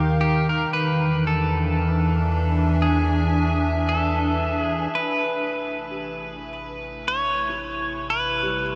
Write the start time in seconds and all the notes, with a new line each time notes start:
Already playing: D#2 C3 D#3 G3 D#4 G4 A#4 F5
0.21 G4
0.49 A#4
0.72 E2 E3 B4
0.93 D4
1.27 A4
1.49 E5
2.18 G#5
2.82 G#4
3.89 A4
4.61 G#4
4.92 A1 C3 A3 B4
5.11 B4
5.31 E4
5.91 G4
6.78 G4
7.08 C#5
7.49 E4
8.10 B4
8.43 G3